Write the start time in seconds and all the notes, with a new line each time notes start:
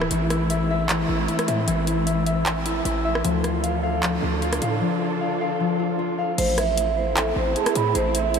Already playing: E4 E5
0.01 cross-stick
0.11 A1 E3 A3 C4, closed hi-hat
0.30 E4, cross-stick, closed hi-hat
0.50 E5, closed hi-hat
0.70 E5
0.89 E3, clap, closed hi-hat
1.09 A1 E4
1.28 E4, closed hi-hat
1.39 cross-stick, closed hi-hat
1.48 A2 E5, closed hi-hat
1.68 A1 E3, closed hi-hat
1.87 E4, closed hi-hat
2.06 E5, closed hi-hat
2.27 E5, closed hi-hat
2.46 E3, clap, closed hi-hat
2.66 E4, closed hi-hat
2.85 A1 E4, closed hi-hat
3.05 E5
3.15 cross-stick
3.24 D2 D3 F3 D4 F4 A4, closed hi-hat
3.44 F4, cross-stick, closed hi-hat
3.63 F5, closed hi-hat
3.83 F5
4.03 F3, clap, closed hi-hat
4.23 D2 F4
4.42 F4, closed hi-hat
4.53 cross-stick, closed hi-hat
4.62 A2 F5, closed hi-hat
4.81 F3
5.01 F4
5.21 F5
5.41 F5
5.60 F3
5.79 F4
5.99 F4
6.18 F5
6.38 A1 A3 C4 E4 C5, closed hi-hat, crash
6.58 E5, cross-stick, closed hi-hat
6.78 closed hi-hat
6.97 C5
7.16 A4, clap, closed hi-hat
7.36 A1 C5
7.56 G#4 A5, closed hi-hat
7.66 cross-stick, closed hi-hat
7.75 A2 B5, closed hi-hat
7.95 A1 C5, closed hi-hat
8.15 E5, closed hi-hat
8.34 closed hi-hat